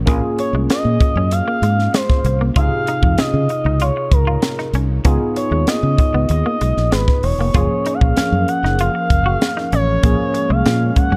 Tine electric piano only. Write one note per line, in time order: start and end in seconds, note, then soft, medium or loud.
0.06 2.52 A#3 medium
0.06 2.52 C#4 medium
0.06 2.52 F4 medium
0.06 2.53 G#4 medium
2.56 5.01 C3 medium
2.56 5.01 D#4 medium
2.56 5.02 F4 medium
2.56 5.02 G#4 medium
5.04 7.50 B3 medium
5.04 7.50 D#4 medium
5.04 7.51 F4 medium
5.04 7.51 G#4 medium
7.54 10.00 F3 medium
7.54 9.99 A#3 medium
7.54 9.99 C#4 medium
7.54 10.00 G#4 medium
10.03 11.17 F3 medium
10.03 11.17 A#3 medium
10.03 11.17 C#4 medium
10.03 11.17 G#4 medium